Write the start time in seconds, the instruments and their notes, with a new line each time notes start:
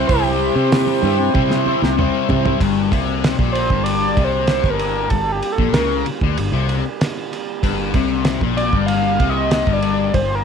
Already playing: overdriven electric guitar E4, harmonium E4 C5 G5 C6
0.07 fingered electric bass C2, overdriven electric guitar C3 G3 C4 E4, analog synth lead G4, kick, open hi-hat
0.25 high conga
0.54 fingered electric bass C3, overdriven electric guitar G3 C4 E4
0.72 snare, open hi-hat, low conga
0.87 high conga
1.02 fingered electric bass G2, overdriven electric guitar C3 G3 C4 E4, high conga, low conga
1.18 muted overdriven electric guitar stroke
1.34 overdriven electric guitar C3 G3 C4 E4, fingered electric bass C3, kick, high tom
1.49 overdriven electric guitar G3 C4 E4, snare
1.66 overdriven electric guitar C3 G3 C4 E4, high conga, low conga
1.82 fingered electric bass C2, muted overdriven electric guitar stroke, snare
1.97 overdriven electric guitar C3 G3 C4 E4, mid tom
2.29 fingered electric bass C3, overdriven electric guitar C3 G3 C4 E4, floor tom, low conga
2.44 overdriven electric guitar G3 C4 E4, floor tom, high conga
2.60 fingered electric bass G1, overdriven electric guitar G2, harmonium G3 A#3 G4, kick, ride
2.91 fingered electric bass C2, overdriven electric guitar C3, kick, ride
3.24 snare, ride
3.39 fingered electric bass A#1, overdriven electric guitar A#2, kick
3.53 analog synth lead C5, ride
3.70 fingered electric bass G1, overdriven electric guitar G2, kick
3.84 analog synth lead D5, ride
4.17 fingered electric bass C2, overdriven electric guitar C3, kick, ride
4.24 analog synth lead C5
4.47 snare, ride
4.64 fingered electric bass G1, overdriven electric guitar G2, kick, snare
4.70 analog synth lead A#4
4.79 ride
5.10 fingered electric bass G1, overdriven electric guitar G2, analog synth lead A4, kick, ride
5.32 analog synth lead G4
5.43 ride
5.52 analog synth lead A4
5.58 fingered electric bass A#1, overdriven electric guitar A#2, kick
5.73 fingered electric bass C#2, overdriven electric guitar C#3, analog synth lead A#4, snare, ride
6.04 muted fingered electric bass stroke, muted overdriven electric guitar stroke, ride
6.21 fingered electric bass D2, overdriven electric guitar D3, kick
6.37 fingered electric bass G1, overdriven electric guitar G2, ride
6.52 fingered electric bass C2, overdriven electric guitar C3
6.69 ride
7.01 snare, ride
7.33 ride
7.63 fingered electric bass G1, overdriven electric guitar G2, kick, ride
7.94 fingered electric bass C2, overdriven electric guitar C3, kick, ride
8.25 snare, ride
8.41 fingered electric bass A#1, overdriven electric guitar A#2, kick
8.57 analog synth lead D5, ride
8.73 fingered electric bass G1, overdriven electric guitar G2, kick
8.86 analog synth lead F5, ride
9.20 fingered electric bass C2, overdriven electric guitar C3, kick, ride
9.30 analog synth lead D#5
9.51 snare, ride
9.67 fingered electric bass G1, overdriven electric guitar G2, kick
9.73 analog synth lead D5
9.82 ride
10.14 fingered electric bass G1, overdriven electric guitar G2, analog synth lead C5, kick, ride
10.35 analog synth lead A#4